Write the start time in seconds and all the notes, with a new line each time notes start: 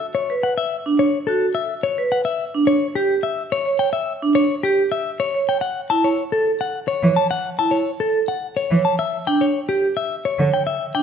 0.15 C#5
0.30 B4
0.43 F#5
0.58 E5
0.86 D4
0.99 C#5
1.27 F#4 A4
1.55 E5
1.83 C#5
1.98 B4
2.12 F#5
2.25 E5
2.54 D4
2.67 C#5
2.95 G4
3.23 E5
3.52 C#5
3.66 C#5
3.79 G5
3.93 E5
4.22 D4
4.35 C#5
4.63 G4
4.92 E5
5.20 C#5
5.35 C#5
5.49 G5
5.61 F#5
5.90 E4 A5
6.04 C#5
6.32 A4
6.61 F#5
6.88 C#5
7.03 E3 C#5
7.16 A5
7.31 F#5
7.59 E4 A5
7.71 C#5
8.00 A4
8.28 F#5
8.57 C#5
8.71 E3 C#5
8.85 A5
8.99 E5
9.27 D4 G5
9.41 C#5
9.69 G4
9.97 E5
10.25 C#5
10.39 D3 C#5
10.54 G5
10.67 E5
10.95 D4 G5